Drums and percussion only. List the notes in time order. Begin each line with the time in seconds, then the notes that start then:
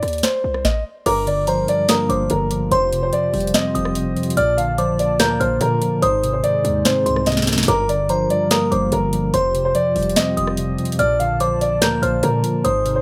0.03 cross-stick, closed hi-hat
0.08 closed hi-hat
0.13 closed hi-hat
0.18 closed hi-hat
0.23 finger snap, snare, closed hi-hat
0.54 cross-stick
0.65 kick, snare
1.06 closed hi-hat, crash
1.27 closed hi-hat
1.47 closed hi-hat
1.68 closed hi-hat
1.88 finger snap, snare, closed hi-hat
2.10 closed hi-hat
2.30 closed hi-hat
2.51 closed hi-hat
2.72 closed hi-hat
2.93 closed hi-hat
3.13 closed hi-hat
3.34 closed hi-hat, open hi-hat
3.40 closed hi-hat
3.47 closed hi-hat
3.54 finger snap, snare, closed hi-hat
3.75 closed hi-hat
3.85 cross-stick
3.95 closed hi-hat
4.17 closed hi-hat
4.23 closed hi-hat
4.30 closed hi-hat
4.37 closed hi-hat
4.58 closed hi-hat
4.78 closed hi-hat
4.99 closed hi-hat
5.19 finger snap, snare, closed hi-hat
5.41 closed hi-hat
5.61 closed hi-hat
5.82 closed hi-hat
6.02 closed hi-hat
6.24 closed hi-hat
6.44 closed hi-hat
6.65 closed hi-hat
6.85 finger snap, snare, closed hi-hat
7.06 closed hi-hat
7.16 cross-stick
7.26 snare, closed hi-hat
7.32 snare
7.37 snare
7.42 snare
7.47 snare, closed hi-hat
7.53 snare
7.58 snare
7.63 snare
7.68 closed hi-hat
7.89 closed hi-hat
8.09 closed hi-hat
8.30 closed hi-hat
8.51 finger snap, snare, closed hi-hat
8.72 closed hi-hat
8.92 closed hi-hat
9.13 closed hi-hat
9.34 closed hi-hat
9.55 closed hi-hat
9.75 closed hi-hat
9.96 closed hi-hat, open hi-hat
10.03 closed hi-hat
10.09 closed hi-hat
10.16 finger snap, snare, closed hi-hat
10.37 closed hi-hat
10.47 cross-stick
10.57 closed hi-hat
10.78 closed hi-hat
10.85 closed hi-hat
10.92 closed hi-hat
10.99 closed hi-hat
11.20 closed hi-hat
11.40 closed hi-hat
11.61 closed hi-hat
11.82 finger snap, snare, closed hi-hat
12.03 closed hi-hat
12.23 closed hi-hat
12.44 closed hi-hat
12.65 closed hi-hat
12.86 closed hi-hat